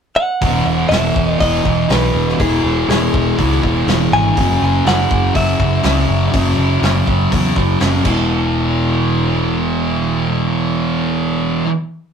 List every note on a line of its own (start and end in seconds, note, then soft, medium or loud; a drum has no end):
0.16 0.88 F#5 loud
0.41 0.61 E1 medium
0.41 0.90 E2 medium
0.41 0.91 B2 loud
0.41 0.93 E3 medium
0.41 kick loud
0.41 open hi-hat medium
0.65 0.85 E1 medium
0.89 1.10 E1 medium
0.89 1.38 E2 medium
0.89 1.40 B2 medium
0.89 1.28 E5 medium
0.89 snare medium
0.89 open hi-hat medium
0.94 1.42 E3 medium
1.16 1.35 E1 medium
1.16 kick medium
1.28 1.40 D#5 medium
1.39 1.60 E1 medium
1.39 1.88 E2 medium
1.39 1.66 B2 medium
1.39 1.63 E3 loud
1.39 1.92 D#5 medium
1.39 kick medium
1.39 open hi-hat medium
1.64 1.85 E1 medium
1.64 1.89 B2 soft
1.64 1.91 E3 medium
1.64 kick medium
1.89 2.09 B1 medium
1.89 2.37 E2 medium
1.89 2.38 B2 medium
1.89 2.41 E3 medium
1.89 2.41 B4 medium
1.89 snare loud
1.89 open hi-hat medium
2.14 2.34 E1 medium
2.29 snare soft
2.38 2.59 E1 medium
2.38 2.87 E2 medium
2.38 2.89 B2 medium
2.38 2.90 E3 medium
2.38 2.88 G#4 medium
2.38 kick loud
2.38 open hi-hat medium
2.64 2.83 E1 medium
2.88 3.08 E1 medium
2.88 3.37 E2 medium
2.88 3.38 B2 medium
2.88 3.40 E3 medium
2.88 4.17 G#4 medium
2.88 snare loud
2.88 open hi-hat soft
3.14 3.33 E1 medium
3.14 kick medium
3.38 3.58 C#2 medium
3.38 3.87 E2 medium
3.38 3.64 B2 medium
3.38 3.62 E3 medium
3.38 kick medium
3.38 open hi-hat medium
3.63 3.83 E1 medium
3.63 3.88 B2 medium
3.63 3.91 E3 medium
3.63 kick medium
3.87 4.07 E1 medium
3.87 4.36 E2 medium
3.87 4.37 B2 medium
3.87 4.39 E3 medium
3.87 snare loud
3.87 open hi-hat soft
4.12 4.31 G#1 loud
4.12 4.87 G#5 loud
4.37 4.56 F#1 medium
4.37 4.85 F#2 medium
4.37 4.86 C#3 medium
4.37 4.88 F#3 loud
4.37 kick loud
4.37 open hi-hat medium
4.62 4.81 F#1 medium
4.85 5.05 F#1 medium
4.85 5.33 F#2 medium
4.85 5.35 C#3 medium
4.85 5.36 F#3 medium
4.85 5.36 F#5 medium
4.85 snare loud
4.85 open hi-hat medium
5.11 5.30 F#1 medium
5.11 kick loud
5.34 5.54 F#1 loud
5.34 5.82 F#2 medium
5.34 5.60 C#3 medium
5.34 5.58 F#3 medium
5.34 7.77 E5 medium
5.34 kick medium
5.34 open hi-hat medium
5.59 5.79 F#1 medium
5.59 5.84 C#3 medium
5.59 5.86 F#3 medium
5.59 kick medium
5.83 6.04 C#2 medium
5.83 6.31 F#2 medium
5.83 6.33 C#3 medium
5.83 6.34 F#3 medium
5.83 snare loud
5.83 open hi-hat medium
6.09 6.28 F#1 loud
6.32 6.53 F#1 medium
6.32 6.82 F#2 medium
6.32 6.83 C#3 medium
6.32 6.85 F#3 medium
6.32 kick loud
6.32 open hi-hat medium
6.57 6.77 F#1 medium
6.82 7.01 F#1 medium
6.82 7.31 F#2 medium
6.82 7.33 C#3 medium
6.82 snare loud
6.82 open hi-hat soft
6.86 7.34 F#3 medium
7.07 7.26 F#1 medium
7.07 kick medium
7.32 7.51 E2 medium
7.32 7.79 F#2 medium
7.32 7.58 C#3 medium
7.32 7.56 F#3 loud
7.32 kick medium
7.32 open hi-hat medium
7.56 7.75 F#1 medium
7.56 7.81 C#3 medium
7.56 7.82 F#3 medium
7.56 kick medium
7.80 8.00 F#1 medium
7.80 8.04 F#2 medium
7.80 8.06 C#3 medium
7.80 8.06 F#3 medium
7.80 snare loud
7.80 open hi-hat soft
8.04 11.62 E1 medium
8.04 11.64 E2 medium
8.04 11.66 B2 medium
8.04 11.68 E3 loud
8.04 kick loud
8.04 crash medium